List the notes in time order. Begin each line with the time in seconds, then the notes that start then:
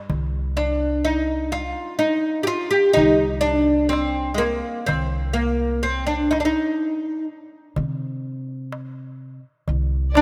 Already playing: G2
0.10 C2, darbuka dum
0.57 D4, darbuka tek
1.05 D#4
1.52 F4, darbuka tek
1.99 D#4
2.43 F4 G4
2.71 G4
2.93 D#4, darbuka dum
2.98 C2
3.41 D4
3.89 C4, darbuka tek
4.34 G#3 A#3
4.86 C2 C4, darbuka dum
5.33 A#3
5.83 C4
6.07 D4
6.31 D#4, darbuka tek
6.40 D4
6.45 D#4
7.76 C3, darbuka dum
8.72 darbuka tek
9.68 C2, darbuka dum
10.15 D4 D5, darbuka tek